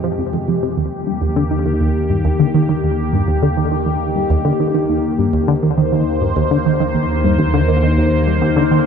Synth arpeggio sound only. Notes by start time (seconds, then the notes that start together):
0.04 F3
0.19 F2
0.33 F2
0.48 F2
0.63 C3
0.77 D#2
1.07 G2
1.22 D#2
1.36 D3
1.51 D#3
1.66 D#3
1.81 D#2
2.10 G2
2.25 D#2
2.40 D3
2.54 D#3
2.69 D#3
2.84 D#2
3.13 G2
3.28 D#2
3.43 D3
3.57 D#3
3.72 D#3
3.86 D#2
4.16 G2
4.30 D#2
4.45 D3
4.60 D#3
4.74 D#3
4.89 D#2
5.19 G2
5.33 D#2
5.48 D3
5.63 D#3
5.78 D#3
5.92 D#2
6.22 G2
6.36 D#2
6.51 D3
6.66 D#3
6.80 D#3
6.95 D#2
7.24 G2
7.39 D#2
7.54 D3
7.68 D#3
7.83 D#3
7.98 D#2
8.27 G2
8.42 D#2
8.56 D3
8.71 D#3